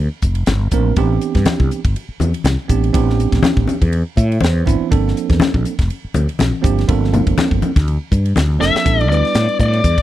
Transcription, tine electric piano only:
0.72 F3 A#3 C4 D4 A#4
0.96 E3 B3 C4 D4 G4
2.68 E3 B3 C4 D4 G4
2.93 E3 B3 C4 D4 G4
4.17 E5
4.41 C5
4.65 E3 B3 C4 D4 E4
4.89 F3 A#3 C4 D4 A4
6.61 F3 A#3 C4 D4 G4
6.88 F3 A#3 C4 D4 A4
8.59 F3 A#3 C4 D4 A4
8.84 G3 B3 D4 E4 A4
9.10 G3 B3 D4 E4 B4

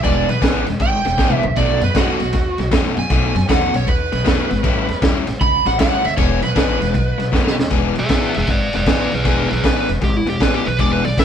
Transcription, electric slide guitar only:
0.04 D5
0.29 B4
0.82 G5
1.35 E5
1.57 D5
1.84 B4
1.98 F#4
2.99 G#5
3.50 F#5
3.76 C#5
3.88 B4
5.41 B5
5.67 F#5
5.81 F#5
6.05 E5
6.17 C#5
6.44 B4

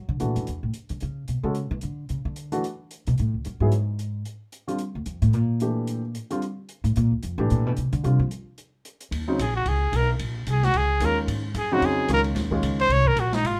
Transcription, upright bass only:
0.09 D3
0.21 A#2
0.36 F#2
0.48 E2
0.63 A2
0.90 D3
1.02 C#3
1.29 B2
1.43 C#3
1.71 E3
1.83 D3
2.10 C#3
2.25 D3
3.07 B2
3.19 A2
3.34 C#2
3.46 F#2
3.60 G#2
4.95 D2
5.06 F2
5.22 A2
5.34 A#2
6.84 A2
6.97 A#2
7.11 D2
7.23 F2
7.38 A2
7.51 A#2
7.66 B2
7.78 C3
7.93 D3
8.04 C3
8.20 F3
9.11 D#2
9.38 A#1
9.66 C#2
9.92 B1
10.20 A#1
10.47 C2
10.74 C#2
11.00 D#2
11.27 G#2
11.54 F#2
11.81 F2
12.09 C#2
12.35 D#2
12.62 C#2
12.89 C2
13.15 A#1
13.44 G#1

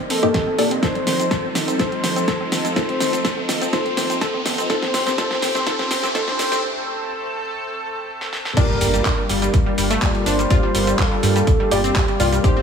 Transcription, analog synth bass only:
0.10 G1
0.58 C2
1.07 F1
1.55 F1
2.04 F1
2.52 F1
3.00 F1
3.49 F2
3.97 F1
4.46 F1
4.94 A1
5.42 A1
5.91 A1
6.39 A1
8.81 G1
9.29 G1
9.78 G1
10.26 G1
10.75 G1
11.23 G2
11.71 G1
12.20 C2

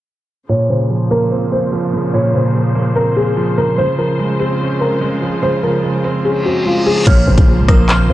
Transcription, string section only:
0.49 A#2 C#3 F3 C5
3.78 C#3 G#3 F4
7.07 A#3 F4 C5

